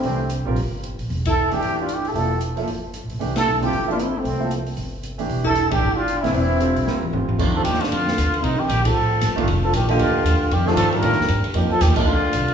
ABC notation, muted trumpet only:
X:1
M:4/4
L:1/16
Q:"Swing" 1/4=230
K:Cmix
V:1 name="Muted trumpet"
C4 z12 | z2 A4 G4 F2 G2 A2- | A4 z12 | z2 A4 G4 F3/2 _E/2 =E2 C2- |
C4 z12 | z2 A4 G4 F4 E2 | E12 z4 | [K:Fmix] z2 A2 G2 F8- F2 |
E2 G4 A8 z2 | z2 A2 G2 F8- F2 | G2 A4 B8 z2 | z2 A2 G2 F8- F2 |]